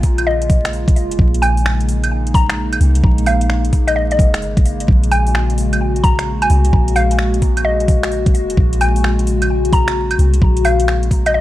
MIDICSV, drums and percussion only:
0, 0, Header, 1, 2, 480
1, 0, Start_track
1, 0, Tempo, 461538
1, 1238, Time_signature, 4, 2, 24, 8
1, 11863, End_track
2, 0, Start_track
2, 0, Title_t, "Drums"
2, 33, Note_on_c, 9, 46, 71
2, 36, Note_on_c, 9, 36, 63
2, 137, Note_off_c, 9, 46, 0
2, 140, Note_off_c, 9, 36, 0
2, 190, Note_on_c, 9, 42, 60
2, 190, Note_on_c, 9, 75, 54
2, 294, Note_off_c, 9, 42, 0
2, 294, Note_off_c, 9, 75, 0
2, 433, Note_on_c, 9, 42, 32
2, 516, Note_on_c, 9, 36, 108
2, 517, Note_on_c, 9, 46, 70
2, 537, Note_off_c, 9, 42, 0
2, 620, Note_off_c, 9, 36, 0
2, 621, Note_off_c, 9, 46, 0
2, 676, Note_on_c, 9, 26, 110
2, 676, Note_on_c, 9, 42, 58
2, 761, Note_on_c, 9, 46, 42
2, 780, Note_off_c, 9, 26, 0
2, 780, Note_off_c, 9, 42, 0
2, 865, Note_off_c, 9, 46, 0
2, 912, Note_on_c, 9, 36, 108
2, 918, Note_on_c, 9, 42, 49
2, 1002, Note_on_c, 9, 46, 70
2, 1016, Note_off_c, 9, 36, 0
2, 1022, Note_off_c, 9, 42, 0
2, 1106, Note_off_c, 9, 46, 0
2, 1159, Note_on_c, 9, 42, 60
2, 1236, Note_on_c, 9, 36, 122
2, 1263, Note_off_c, 9, 42, 0
2, 1340, Note_off_c, 9, 36, 0
2, 1398, Note_on_c, 9, 42, 47
2, 1482, Note_on_c, 9, 46, 72
2, 1482, Note_on_c, 9, 75, 66
2, 1502, Note_off_c, 9, 42, 0
2, 1586, Note_off_c, 9, 46, 0
2, 1586, Note_off_c, 9, 75, 0
2, 1637, Note_on_c, 9, 46, 41
2, 1724, Note_on_c, 9, 26, 110
2, 1724, Note_on_c, 9, 75, 37
2, 1741, Note_off_c, 9, 46, 0
2, 1828, Note_off_c, 9, 26, 0
2, 1828, Note_off_c, 9, 75, 0
2, 1878, Note_on_c, 9, 42, 33
2, 1962, Note_on_c, 9, 46, 71
2, 1982, Note_off_c, 9, 42, 0
2, 2066, Note_off_c, 9, 46, 0
2, 2118, Note_on_c, 9, 42, 60
2, 2118, Note_on_c, 9, 75, 52
2, 2222, Note_off_c, 9, 42, 0
2, 2222, Note_off_c, 9, 75, 0
2, 2358, Note_on_c, 9, 42, 32
2, 2437, Note_on_c, 9, 36, 111
2, 2442, Note_on_c, 9, 46, 70
2, 2462, Note_off_c, 9, 42, 0
2, 2541, Note_off_c, 9, 36, 0
2, 2546, Note_off_c, 9, 46, 0
2, 2595, Note_on_c, 9, 26, 113
2, 2595, Note_on_c, 9, 42, 59
2, 2699, Note_off_c, 9, 26, 0
2, 2699, Note_off_c, 9, 42, 0
2, 2835, Note_on_c, 9, 42, 46
2, 2835, Note_on_c, 9, 75, 64
2, 2919, Note_on_c, 9, 46, 69
2, 2939, Note_off_c, 9, 42, 0
2, 2939, Note_off_c, 9, 75, 0
2, 3023, Note_off_c, 9, 46, 0
2, 3071, Note_on_c, 9, 42, 59
2, 3158, Note_on_c, 9, 36, 122
2, 3175, Note_off_c, 9, 42, 0
2, 3262, Note_off_c, 9, 36, 0
2, 3310, Note_on_c, 9, 42, 45
2, 3395, Note_on_c, 9, 46, 74
2, 3395, Note_on_c, 9, 75, 66
2, 3414, Note_off_c, 9, 42, 0
2, 3499, Note_off_c, 9, 46, 0
2, 3499, Note_off_c, 9, 75, 0
2, 3548, Note_on_c, 9, 42, 52
2, 3637, Note_on_c, 9, 26, 110
2, 3652, Note_off_c, 9, 42, 0
2, 3741, Note_off_c, 9, 26, 0
2, 3792, Note_on_c, 9, 42, 32
2, 3877, Note_on_c, 9, 36, 62
2, 3877, Note_on_c, 9, 46, 73
2, 3896, Note_off_c, 9, 42, 0
2, 3981, Note_off_c, 9, 36, 0
2, 3981, Note_off_c, 9, 46, 0
2, 4033, Note_on_c, 9, 42, 59
2, 4033, Note_on_c, 9, 75, 52
2, 4137, Note_off_c, 9, 42, 0
2, 4137, Note_off_c, 9, 75, 0
2, 4274, Note_on_c, 9, 42, 32
2, 4357, Note_on_c, 9, 36, 111
2, 4362, Note_on_c, 9, 46, 72
2, 4378, Note_off_c, 9, 42, 0
2, 4461, Note_off_c, 9, 36, 0
2, 4466, Note_off_c, 9, 46, 0
2, 4513, Note_on_c, 9, 26, 114
2, 4513, Note_on_c, 9, 42, 58
2, 4598, Note_on_c, 9, 46, 42
2, 4617, Note_off_c, 9, 26, 0
2, 4617, Note_off_c, 9, 42, 0
2, 4702, Note_off_c, 9, 46, 0
2, 4752, Note_on_c, 9, 36, 109
2, 4754, Note_on_c, 9, 42, 43
2, 4841, Note_on_c, 9, 46, 72
2, 4856, Note_off_c, 9, 36, 0
2, 4858, Note_off_c, 9, 42, 0
2, 4945, Note_off_c, 9, 46, 0
2, 4995, Note_on_c, 9, 42, 56
2, 5078, Note_on_c, 9, 36, 119
2, 5099, Note_off_c, 9, 42, 0
2, 5182, Note_off_c, 9, 36, 0
2, 5237, Note_on_c, 9, 42, 43
2, 5320, Note_on_c, 9, 46, 73
2, 5320, Note_on_c, 9, 75, 65
2, 5341, Note_off_c, 9, 42, 0
2, 5424, Note_off_c, 9, 46, 0
2, 5424, Note_off_c, 9, 75, 0
2, 5477, Note_on_c, 9, 46, 42
2, 5563, Note_on_c, 9, 26, 107
2, 5563, Note_on_c, 9, 75, 34
2, 5581, Note_off_c, 9, 46, 0
2, 5667, Note_off_c, 9, 26, 0
2, 5667, Note_off_c, 9, 75, 0
2, 5719, Note_on_c, 9, 42, 31
2, 5802, Note_on_c, 9, 46, 77
2, 5823, Note_off_c, 9, 42, 0
2, 5906, Note_off_c, 9, 46, 0
2, 5958, Note_on_c, 9, 42, 56
2, 5958, Note_on_c, 9, 75, 52
2, 6062, Note_off_c, 9, 42, 0
2, 6062, Note_off_c, 9, 75, 0
2, 6198, Note_on_c, 9, 42, 30
2, 6279, Note_on_c, 9, 36, 107
2, 6282, Note_on_c, 9, 46, 73
2, 6302, Note_off_c, 9, 42, 0
2, 6383, Note_off_c, 9, 36, 0
2, 6386, Note_off_c, 9, 46, 0
2, 6435, Note_on_c, 9, 26, 107
2, 6435, Note_on_c, 9, 42, 54
2, 6539, Note_off_c, 9, 26, 0
2, 6539, Note_off_c, 9, 42, 0
2, 6676, Note_on_c, 9, 42, 43
2, 6676, Note_on_c, 9, 75, 65
2, 6758, Note_on_c, 9, 46, 76
2, 6780, Note_off_c, 9, 42, 0
2, 6780, Note_off_c, 9, 75, 0
2, 6862, Note_off_c, 9, 46, 0
2, 6912, Note_on_c, 9, 42, 55
2, 7000, Note_on_c, 9, 36, 114
2, 7016, Note_off_c, 9, 42, 0
2, 7104, Note_off_c, 9, 36, 0
2, 7155, Note_on_c, 9, 42, 42
2, 7238, Note_on_c, 9, 46, 81
2, 7238, Note_on_c, 9, 75, 65
2, 7259, Note_off_c, 9, 42, 0
2, 7342, Note_off_c, 9, 46, 0
2, 7342, Note_off_c, 9, 75, 0
2, 7395, Note_on_c, 9, 42, 55
2, 7474, Note_on_c, 9, 26, 104
2, 7499, Note_off_c, 9, 42, 0
2, 7578, Note_off_c, 9, 26, 0
2, 7634, Note_on_c, 9, 42, 30
2, 7716, Note_on_c, 9, 46, 81
2, 7718, Note_on_c, 9, 36, 59
2, 7738, Note_off_c, 9, 42, 0
2, 7820, Note_off_c, 9, 46, 0
2, 7822, Note_off_c, 9, 36, 0
2, 7872, Note_on_c, 9, 42, 54
2, 7872, Note_on_c, 9, 75, 55
2, 7976, Note_off_c, 9, 42, 0
2, 7976, Note_off_c, 9, 75, 0
2, 8115, Note_on_c, 9, 42, 30
2, 8197, Note_on_c, 9, 36, 99
2, 8198, Note_on_c, 9, 46, 80
2, 8219, Note_off_c, 9, 42, 0
2, 8301, Note_off_c, 9, 36, 0
2, 8302, Note_off_c, 9, 46, 0
2, 8355, Note_on_c, 9, 26, 104
2, 8355, Note_on_c, 9, 42, 53
2, 8441, Note_on_c, 9, 46, 45
2, 8459, Note_off_c, 9, 26, 0
2, 8459, Note_off_c, 9, 42, 0
2, 8545, Note_off_c, 9, 46, 0
2, 8593, Note_on_c, 9, 36, 105
2, 8594, Note_on_c, 9, 42, 45
2, 8680, Note_on_c, 9, 46, 77
2, 8697, Note_off_c, 9, 36, 0
2, 8698, Note_off_c, 9, 42, 0
2, 8784, Note_off_c, 9, 46, 0
2, 8839, Note_on_c, 9, 42, 56
2, 8917, Note_on_c, 9, 36, 110
2, 8943, Note_off_c, 9, 42, 0
2, 9021, Note_off_c, 9, 36, 0
2, 9078, Note_on_c, 9, 42, 44
2, 9162, Note_on_c, 9, 46, 80
2, 9162, Note_on_c, 9, 75, 68
2, 9182, Note_off_c, 9, 42, 0
2, 9266, Note_off_c, 9, 46, 0
2, 9266, Note_off_c, 9, 75, 0
2, 9318, Note_on_c, 9, 46, 45
2, 9404, Note_on_c, 9, 26, 100
2, 9404, Note_on_c, 9, 75, 38
2, 9422, Note_off_c, 9, 46, 0
2, 9508, Note_off_c, 9, 26, 0
2, 9508, Note_off_c, 9, 75, 0
2, 9559, Note_on_c, 9, 42, 32
2, 9641, Note_on_c, 9, 46, 79
2, 9663, Note_off_c, 9, 42, 0
2, 9745, Note_off_c, 9, 46, 0
2, 9795, Note_on_c, 9, 42, 57
2, 9795, Note_on_c, 9, 75, 57
2, 9899, Note_off_c, 9, 42, 0
2, 9899, Note_off_c, 9, 75, 0
2, 10035, Note_on_c, 9, 42, 32
2, 10114, Note_on_c, 9, 36, 100
2, 10116, Note_on_c, 9, 46, 78
2, 10139, Note_off_c, 9, 42, 0
2, 10218, Note_off_c, 9, 36, 0
2, 10220, Note_off_c, 9, 46, 0
2, 10272, Note_on_c, 9, 26, 103
2, 10272, Note_on_c, 9, 42, 55
2, 10376, Note_off_c, 9, 26, 0
2, 10376, Note_off_c, 9, 42, 0
2, 10511, Note_on_c, 9, 42, 45
2, 10511, Note_on_c, 9, 75, 69
2, 10599, Note_on_c, 9, 46, 77
2, 10615, Note_off_c, 9, 42, 0
2, 10615, Note_off_c, 9, 75, 0
2, 10703, Note_off_c, 9, 46, 0
2, 10750, Note_on_c, 9, 42, 57
2, 10834, Note_on_c, 9, 36, 113
2, 10854, Note_off_c, 9, 42, 0
2, 10938, Note_off_c, 9, 36, 0
2, 10990, Note_on_c, 9, 42, 48
2, 11073, Note_on_c, 9, 46, 77
2, 11073, Note_on_c, 9, 75, 70
2, 11094, Note_off_c, 9, 42, 0
2, 11177, Note_off_c, 9, 46, 0
2, 11177, Note_off_c, 9, 75, 0
2, 11229, Note_on_c, 9, 42, 57
2, 11317, Note_on_c, 9, 26, 102
2, 11317, Note_on_c, 9, 75, 38
2, 11333, Note_off_c, 9, 42, 0
2, 11421, Note_off_c, 9, 26, 0
2, 11421, Note_off_c, 9, 75, 0
2, 11471, Note_on_c, 9, 42, 33
2, 11555, Note_on_c, 9, 36, 61
2, 11557, Note_on_c, 9, 46, 77
2, 11575, Note_off_c, 9, 42, 0
2, 11659, Note_off_c, 9, 36, 0
2, 11661, Note_off_c, 9, 46, 0
2, 11712, Note_on_c, 9, 42, 59
2, 11712, Note_on_c, 9, 75, 58
2, 11816, Note_off_c, 9, 42, 0
2, 11816, Note_off_c, 9, 75, 0
2, 11863, End_track
0, 0, End_of_file